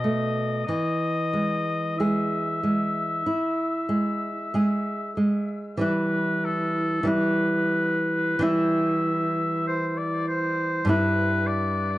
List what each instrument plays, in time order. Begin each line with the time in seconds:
Already playing: nylon-string guitar B2, oboe D#5
0.04 nylon-string guitar A3
0.67 nylon-string guitar E3, oboe D#5
1.33 nylon-string guitar G#3
1.98 nylon-string guitar G#3 G#4, oboe E5
2.63 nylon-string guitar G#3
3.26 nylon-string guitar E4
3.89 nylon-string guitar G#3
4.54 nylon-string guitar G#3 G#4
5.17 nylon-string guitar G#3
5.78 nylon-string guitar E3 G3 E4, oboe B4
6.45 oboe A4
7.03 nylon-string guitar E3 G3 E4, oboe B4
8.39 nylon-string guitar E3 G3 E4, oboe E5
9.67 oboe C5
9.97 oboe D5
10.28 oboe C5
10.85 nylon-string guitar G2 G3
10.89 nylon-string guitar E4, oboe B4
11.47 oboe D5